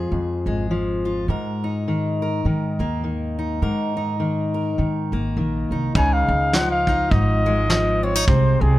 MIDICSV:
0, 0, Header, 1, 5, 480
1, 0, Start_track
1, 0, Tempo, 582524
1, 1059, Time_signature, 4, 2, 24, 8
1, 7242, End_track
2, 0, Start_track
2, 0, Title_t, "Flugelhorn"
2, 0, Program_c, 0, 56
2, 4923, Note_on_c, 0, 80, 105
2, 5054, Note_on_c, 0, 77, 107
2, 5066, Note_off_c, 0, 80, 0
2, 5394, Note_on_c, 0, 78, 100
2, 5406, Note_off_c, 0, 77, 0
2, 5519, Note_off_c, 0, 78, 0
2, 5524, Note_on_c, 0, 77, 96
2, 5858, Note_on_c, 0, 75, 106
2, 5871, Note_off_c, 0, 77, 0
2, 6621, Note_on_c, 0, 73, 91
2, 6633, Note_off_c, 0, 75, 0
2, 6822, Note_on_c, 0, 72, 96
2, 6835, Note_off_c, 0, 73, 0
2, 7096, Note_on_c, 0, 68, 87
2, 7109, Note_off_c, 0, 72, 0
2, 7242, Note_off_c, 0, 68, 0
2, 7242, End_track
3, 0, Start_track
3, 0, Title_t, "Steel-string acoustic guitar"
3, 0, Program_c, 1, 25
3, 0, Note_on_c, 1, 41, 53
3, 0, Note_on_c, 1, 53, 47
3, 0, Note_on_c, 1, 56, 43
3, 0, Note_on_c, 1, 65, 40
3, 0, Note_on_c, 1, 68, 44
3, 88, Note_off_c, 1, 41, 0
3, 98, Note_on_c, 1, 41, 45
3, 381, Note_off_c, 1, 56, 0
3, 384, Note_on_c, 1, 56, 46
3, 574, Note_off_c, 1, 53, 0
3, 583, Note_on_c, 1, 53, 49
3, 857, Note_off_c, 1, 65, 0
3, 867, Note_on_c, 1, 65, 44
3, 1036, Note_off_c, 1, 41, 0
3, 1037, Note_off_c, 1, 53, 0
3, 1039, Note_off_c, 1, 65, 0
3, 1065, Note_on_c, 1, 44, 59
3, 1067, Note_off_c, 1, 68, 0
3, 1070, Note_on_c, 1, 70, 51
3, 1349, Note_on_c, 1, 63, 43
3, 1547, Note_on_c, 1, 51, 47
3, 1826, Note_off_c, 1, 70, 0
3, 1830, Note_on_c, 1, 70, 45
3, 2015, Note_off_c, 1, 51, 0
3, 2025, Note_on_c, 1, 51, 47
3, 2303, Note_off_c, 1, 56, 0
3, 2306, Note_on_c, 1, 58, 44
3, 2492, Note_off_c, 1, 51, 0
3, 2502, Note_on_c, 1, 51, 46
3, 2787, Note_off_c, 1, 63, 0
3, 2790, Note_on_c, 1, 63, 42
3, 2962, Note_off_c, 1, 58, 0
3, 2963, Note_off_c, 1, 44, 0
3, 2964, Note_off_c, 1, 70, 0
3, 2982, Note_on_c, 1, 44, 52
3, 2987, Note_on_c, 1, 70, 52
3, 3265, Note_off_c, 1, 63, 0
3, 3269, Note_on_c, 1, 63, 44
3, 3449, Note_off_c, 1, 51, 0
3, 3458, Note_on_c, 1, 51, 48
3, 3733, Note_off_c, 1, 70, 0
3, 3743, Note_on_c, 1, 70, 42
3, 3929, Note_off_c, 1, 51, 0
3, 3939, Note_on_c, 1, 51, 43
3, 4226, Note_on_c, 1, 58, 43
3, 4418, Note_off_c, 1, 51, 0
3, 4428, Note_on_c, 1, 51, 47
3, 4701, Note_off_c, 1, 63, 0
3, 4711, Note_on_c, 1, 63, 42
3, 4879, Note_off_c, 1, 44, 0
3, 4879, Note_off_c, 1, 70, 0
3, 4881, Note_off_c, 1, 58, 0
3, 4884, Note_off_c, 1, 63, 0
3, 4905, Note_on_c, 1, 49, 76
3, 4911, Note_on_c, 1, 63, 66
3, 5380, Note_off_c, 1, 51, 0
3, 5384, Note_off_c, 1, 49, 0
3, 5384, Note_on_c, 1, 53, 68
3, 5388, Note_on_c, 1, 65, 70
3, 5668, Note_off_c, 1, 63, 0
3, 5671, Note_on_c, 1, 63, 66
3, 5870, Note_on_c, 1, 44, 66
3, 6146, Note_on_c, 1, 56, 66
3, 6332, Note_off_c, 1, 53, 0
3, 6342, Note_on_c, 1, 53, 66
3, 6615, Note_off_c, 1, 63, 0
3, 6618, Note_on_c, 1, 60, 62
3, 6720, Note_off_c, 1, 60, 0
3, 6720, Note_on_c, 1, 63, 54
3, 6795, Note_off_c, 1, 53, 0
3, 6798, Note_off_c, 1, 44, 0
3, 6818, Note_on_c, 1, 48, 80
3, 6819, Note_off_c, 1, 63, 0
3, 6821, Note_off_c, 1, 65, 0
3, 6825, Note_on_c, 1, 60, 66
3, 7242, Note_off_c, 1, 48, 0
3, 7242, Note_off_c, 1, 56, 0
3, 7242, Note_off_c, 1, 60, 0
3, 7242, End_track
4, 0, Start_track
4, 0, Title_t, "Upright bass"
4, 0, Program_c, 2, 32
4, 95, Note_on_c, 2, 41, 62
4, 362, Note_off_c, 2, 41, 0
4, 378, Note_on_c, 2, 32, 63
4, 1027, Note_off_c, 2, 32, 0
4, 1055, Note_on_c, 2, 44, 65
4, 1987, Note_off_c, 2, 44, 0
4, 2018, Note_on_c, 2, 44, 62
4, 2286, Note_off_c, 2, 44, 0
4, 2300, Note_on_c, 2, 39, 64
4, 2950, Note_off_c, 2, 39, 0
4, 2982, Note_on_c, 2, 44, 65
4, 3911, Note_off_c, 2, 44, 0
4, 3944, Note_on_c, 2, 44, 66
4, 4210, Note_off_c, 2, 44, 0
4, 4219, Note_on_c, 2, 32, 61
4, 4402, Note_off_c, 2, 32, 0
4, 4422, Note_on_c, 2, 34, 59
4, 4675, Note_off_c, 2, 34, 0
4, 4702, Note_on_c, 2, 36, 54
4, 4883, Note_off_c, 2, 36, 0
4, 4904, Note_on_c, 2, 37, 88
4, 5169, Note_off_c, 2, 37, 0
4, 5178, Note_on_c, 2, 37, 84
4, 5827, Note_off_c, 2, 37, 0
4, 5862, Note_on_c, 2, 32, 95
4, 6785, Note_off_c, 2, 32, 0
4, 6819, Note_on_c, 2, 36, 98
4, 7083, Note_off_c, 2, 36, 0
4, 7096, Note_on_c, 2, 36, 90
4, 7242, Note_off_c, 2, 36, 0
4, 7242, End_track
5, 0, Start_track
5, 0, Title_t, "Drums"
5, 4904, Note_on_c, 9, 36, 100
5, 4987, Note_off_c, 9, 36, 0
5, 5384, Note_on_c, 9, 38, 91
5, 5466, Note_off_c, 9, 38, 0
5, 5662, Note_on_c, 9, 36, 68
5, 5744, Note_off_c, 9, 36, 0
5, 5862, Note_on_c, 9, 36, 73
5, 5945, Note_off_c, 9, 36, 0
5, 6342, Note_on_c, 9, 38, 94
5, 6424, Note_off_c, 9, 38, 0
5, 6821, Note_on_c, 9, 36, 101
5, 6903, Note_off_c, 9, 36, 0
5, 7242, End_track
0, 0, End_of_file